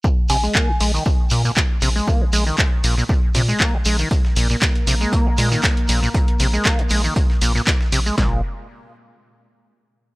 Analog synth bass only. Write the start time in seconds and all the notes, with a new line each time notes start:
0.30 A#1
0.81 A#1
1.31 A#2
1.82 A#1
2.33 A#1
2.84 A#1
3.35 A#2
3.85 A#1
4.36 A#1
4.87 A#1
5.38 A#2
5.89 A#1
6.40 A#1
6.91 A#1
7.41 A#1
7.92 A#1
8.18 A#1